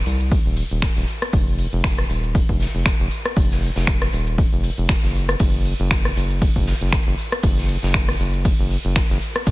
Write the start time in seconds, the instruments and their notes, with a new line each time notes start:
0.06 analog synth bass C2, closed hi-hat, open hi-hat
0.20 closed hi-hat, shaker
0.32 kick, closed hi-hat, shaker
0.46 analog synth bass D#1, closed hi-hat, shaker
0.57 closed hi-hat, open hi-hat
0.71 analog synth bass D#1, closed hi-hat, shaker
0.82 finger snap, kick, snare, closed hi-hat, shaker
0.96 analog synth bass D#1, snare, closed hi-hat, shaker
1.08 closed hi-hat, open hi-hat
1.22 cross-stick, closed hi-hat, shaker
1.33 analog synth bass F1, kick, closed hi-hat, shaker
1.48 closed hi-hat, shaker
1.58 closed hi-hat, open hi-hat
1.73 analog synth bass F1, closed hi-hat, shaker
1.84 finger snap, kick, snare, closed hi-hat, shaker
1.98 cross-stick, closed hi-hat, shaker
2.10 analog synth bass D#1, closed hi-hat, open hi-hat
2.24 closed hi-hat, shaker
2.35 kick, closed hi-hat, shaker
2.49 analog synth bass F1, kick, closed hi-hat, shaker
2.60 snare, closed hi-hat, open hi-hat
2.75 analog synth bass F1, closed hi-hat, shaker
2.86 finger snap, kick, snare, closed hi-hat, shaker
2.99 analog synth bass F1, closed hi-hat, shaker
3.11 closed hi-hat, open hi-hat
3.25 cross-stick, closed hi-hat, shaker
3.37 analog synth bass F1, kick, closed hi-hat, shaker
3.51 snare, closed hi-hat, shaker
3.62 closed hi-hat, open hi-hat
3.76 analog synth bass F1, snare, closed hi-hat, shaker
3.87 finger snap, kick, snare, closed hi-hat, shaker
4.01 cross-stick, snare, closed hi-hat, shaker
4.13 analog synth bass D#1, closed hi-hat, open hi-hat
4.27 closed hi-hat, shaker
4.38 kick, closed hi-hat, shaker
4.53 analog synth bass F1, closed hi-hat, shaker
4.64 closed hi-hat, open hi-hat
4.78 analog synth bass F1, closed hi-hat, shaker
4.89 finger snap, kick, snare, closed hi-hat, shaker
5.03 analog synth bass F#1, snare, closed hi-hat, shaker
5.15 closed hi-hat, open hi-hat
5.29 cross-stick, closed hi-hat, shaker
5.39 analog synth bass F#1, kick, closed hi-hat, ride, shaker
5.54 closed hi-hat, shaker
5.66 closed hi-hat, open hi-hat
5.80 analog synth bass F#1, closed hi-hat, shaker
5.91 finger snap, kick, snare, closed hi-hat, ride, shaker
6.05 cross-stick, closed hi-hat, shaker
6.16 analog synth bass F#1, closed hi-hat, open hi-hat
6.31 closed hi-hat, shaker
6.42 kick, closed hi-hat, ride, shaker
6.56 analog synth bass F#1, kick, closed hi-hat, shaker
6.67 snare, closed hi-hat, open hi-hat
6.81 analog synth bass F#1, closed hi-hat, shaker
6.92 finger snap, kick, snare, closed hi-hat, ride, shaker
7.07 analog synth bass F#1, closed hi-hat, shaker
7.18 closed hi-hat, open hi-hat
7.32 cross-stick, closed hi-hat, shaker
7.43 analog synth bass F#1, kick, closed hi-hat, ride, shaker
7.58 snare, closed hi-hat, shaker
7.69 closed hi-hat, open hi-hat
7.83 analog synth bass F#1, snare, closed hi-hat, shaker
7.94 finger snap, kick, snare, closed hi-hat, ride, shaker
8.08 cross-stick, snare, closed hi-hat, shaker
8.20 analog synth bass F#1, closed hi-hat, open hi-hat
8.34 closed hi-hat, shaker
8.45 kick, closed hi-hat, ride, shaker
8.59 analog synth bass F#1, closed hi-hat, shaker
8.71 closed hi-hat, open hi-hat
8.85 analog synth bass F#1, closed hi-hat, shaker
8.96 finger snap, kick, snare, closed hi-hat, ride, shaker
9.10 analog synth bass F#1, snare, closed hi-hat, shaker
9.21 closed hi-hat, open hi-hat
9.35 cross-stick, closed hi-hat, shaker
9.47 analog synth bass G#1, kick, closed hi-hat, ride, shaker